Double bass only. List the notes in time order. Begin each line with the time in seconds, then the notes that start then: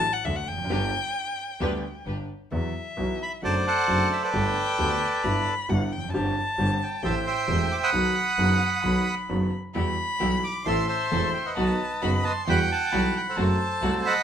0.26 D2
0.48 F1
0.70 G1
1.61 D2
2.07 G1
2.52 E2
2.98 B1
3.44 F#1
3.89 F#1
4.34 G1
4.79 D2
5.25 G1
5.69 G1
5.92 F1
6.14 G1
6.59 G1
7.04 A1
7.49 E1
7.94 B1
8.39 F#1
8.84 B1
9.30 F#1
9.76 E2
10.21 B1
10.66 A1
11.13 E1
11.58 B1
12.03 F#1
12.48 E2
12.93 B1
13.37 F#1
13.82 C2